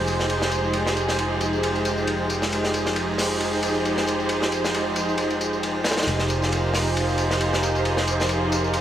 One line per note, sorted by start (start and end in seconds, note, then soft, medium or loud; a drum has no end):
0.00 6.06 F1 medium
0.00 8.81 F3 medium
0.00 6.06 G#3 medium
0.00 2.50 D#4 medium
0.00 8.81 D#4 medium
0.00 2.50 G4 medium
0.00 2.50 G#4 medium
0.00 2.50 C5 medium
0.00 6.04 G5 medium
0.07 ride medium
0.07 tambourine medium
0.20 snare soft
0.20 tambourine soft
0.30 ride medium
0.30 tambourine soft
0.42 snare soft
0.51 ride medium
0.51 tambourine medium
0.64 tambourine soft
0.73 ride medium
0.73 tambourine soft
0.87 snare soft
0.97 ride medium
0.97 tambourine medium
1.09 snare soft
1.09 tambourine soft
1.19 ride medium
1.19 tambourine soft
1.41 ride medium
1.41 tambourine medium
1.53 tambourine soft
1.63 ride medium
1.63 tambourine soft
1.75 ride soft
1.75 tambourine soft
1.85 ride medium
1.85 tambourine medium
1.97 tambourine soft
2.07 ride medium
2.07 tambourine soft
2.30 ride medium
2.30 tambourine medium
2.42 snare soft
2.42 tambourine soft
2.52 6.05 D#4 medium
2.52 6.05 G4 medium
2.52 6.05 G#4 medium
2.52 6.05 C5 medium
2.52 ride medium
2.52 tambourine soft
2.64 snare soft
2.74 ride medium
2.74 tambourine medium
2.86 snare soft
2.86 tambourine soft
2.96 ride medium
2.96 tambourine soft
3.18 snare soft
3.18 open hi-hat medium
3.18 tambourine medium
3.31 tambourine soft
3.40 ride medium
3.40 tambourine soft
3.53 tambourine soft
3.63 ride medium
3.63 tambourine medium
3.75 tambourine soft
3.85 ride medium
3.85 tambourine soft
3.97 snare soft
4.07 ride medium
4.07 tambourine medium
4.20 tambourine soft
4.29 ride medium
4.29 tambourine soft
4.42 snare soft
4.52 ride medium
4.52 tambourine medium
4.64 snare soft
4.64 tambourine soft
4.74 ride medium
4.74 tambourine soft
4.96 ride medium
4.96 tambourine medium
5.09 tambourine soft
5.18 ride medium
5.18 tambourine soft
5.30 ride soft
5.30 tambourine soft
5.41 ride medium
5.41 tambourine medium
5.53 tambourine soft
5.63 ride medium
5.63 tambourine soft
5.84 snare medium
5.84 ride medium
5.84 tambourine medium
5.91 snare medium
5.91 ride medium
5.97 snare medium
5.97 ride medium
5.97 tambourine soft
6.02 snare medium
6.02 ride medium
6.07 8.81 F1 medium
6.07 8.81 D#4 medium
6.07 8.81 F4 medium
6.07 8.81 G4 medium
6.07 8.81 G#4 medium
6.07 8.81 A#4 medium
6.07 8.81 C5 medium
6.07 ride medium
6.07 tambourine soft
6.19 snare soft
6.30 ride medium
6.30 tambourine medium
6.42 snare soft
6.42 tambourine soft
6.52 ride medium
6.52 tambourine soft
6.74 snare soft
6.74 open hi-hat medium
6.74 tambourine medium
6.87 tambourine soft
6.97 ride medium
6.97 tambourine soft
7.09 tambourine soft
7.18 ride medium
7.18 tambourine medium
7.31 snare soft
7.31 tambourine soft
7.41 ride medium
7.41 tambourine soft
7.53 snare soft
7.63 ride medium
7.63 tambourine medium
7.75 tambourine soft
7.85 ride medium
7.85 tambourine soft
7.97 snare soft
8.07 ride medium
8.07 tambourine medium
8.20 snare soft
8.20 tambourine soft
8.29 ride medium
8.29 tambourine soft
8.52 ride medium
8.52 tambourine medium
8.64 tambourine soft
8.74 ride medium
8.74 tambourine soft